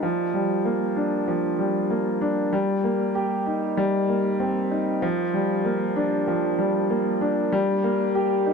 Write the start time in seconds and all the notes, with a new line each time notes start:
0.03 F3
0.34 G3
0.65 A#3
0.96 D4
1.28 F3
1.59 G3
1.90 A#3
2.21 D4
2.53 G3
2.84 A#3
3.15 G4
3.46 D#4
3.77 G3
4.09 A#3
4.40 C4
4.71 D#4
5.02 F3
5.34 G3
5.65 A#3
5.96 D4
6.28 F3
6.59 G3
6.90 A#3
7.21 D4
7.52 G3
7.84 A#3
8.15 G4
8.46 D#4